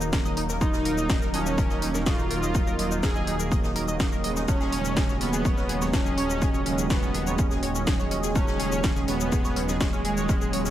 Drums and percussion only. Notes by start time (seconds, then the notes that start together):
0.01 shaker
0.13 kick, snare, closed hi-hat, shaker
0.25 shaker
0.37 closed hi-hat, open hi-hat
0.50 snare, shaker
0.61 kick, closed hi-hat, shaker
0.73 snare, shaker
0.85 closed hi-hat, open hi-hat
0.98 shaker
1.09 kick, snare, closed hi-hat, shaker
1.22 snare, shaker
1.33 snare, closed hi-hat, open hi-hat
1.46 shaker
1.58 kick, closed hi-hat, shaker
1.70 snare, shaker
1.82 closed hi-hat, open hi-hat
1.95 snare, shaker
2.06 kick, snare, closed hi-hat, shaker
2.19 shaker
2.31 closed hi-hat, open hi-hat
2.43 shaker
2.55 kick, closed hi-hat, shaker
2.67 shaker
2.79 closed hi-hat, open hi-hat
2.91 shaker
3.03 kick, snare, closed hi-hat, shaker
3.16 shaker
3.27 closed hi-hat, open hi-hat
3.40 shaker
3.52 kick, closed hi-hat, shaker
3.64 snare, shaker
3.76 closed hi-hat, open hi-hat
3.88 shaker
4.00 kick, snare, closed hi-hat, shaker
4.12 shaker
4.24 closed hi-hat, open hi-hat
4.37 snare, shaker
4.48 kick, closed hi-hat, shaker
4.61 snare, shaker
4.72 closed hi-hat, open hi-hat
4.85 shaker
4.96 kick, snare, closed hi-hat, shaker
5.09 snare, shaker
5.21 snare, closed hi-hat, open hi-hat
5.33 shaker
5.45 kick, closed hi-hat, shaker
5.58 snare, shaker
5.69 closed hi-hat, open hi-hat
5.82 snare, shaker
5.93 kick, snare, closed hi-hat, shaker
6.06 shaker
6.17 closed hi-hat, open hi-hat
6.30 shaker
6.42 kick, closed hi-hat, shaker
6.54 shaker
6.66 closed hi-hat, open hi-hat
6.79 shaker
6.90 kick, snare, closed hi-hat, shaker
7.03 shaker
7.14 closed hi-hat, open hi-hat
7.27 shaker
7.38 kick, closed hi-hat, shaker
7.51 snare, shaker
7.63 closed hi-hat, open hi-hat
7.75 shaker
7.87 kick, snare, closed hi-hat, shaker
8.00 shaker
8.11 closed hi-hat, open hi-hat
8.23 snare, shaker
8.35 kick, closed hi-hat, shaker
8.48 snare, shaker
8.60 closed hi-hat, open hi-hat
8.72 shaker
8.84 kick, snare, closed hi-hat, shaker
8.96 snare, shaker
9.08 snare, closed hi-hat, open hi-hat
9.20 shaker
9.32 kick, closed hi-hat, shaker
9.45 snare, shaker
9.56 closed hi-hat, open hi-hat
9.69 snare, shaker
9.81 kick, snare, closed hi-hat, shaker
9.93 shaker
10.04 closed hi-hat, open hi-hat
10.17 shaker
10.29 kick, closed hi-hat, shaker
10.41 shaker
10.53 closed hi-hat, open hi-hat
10.66 shaker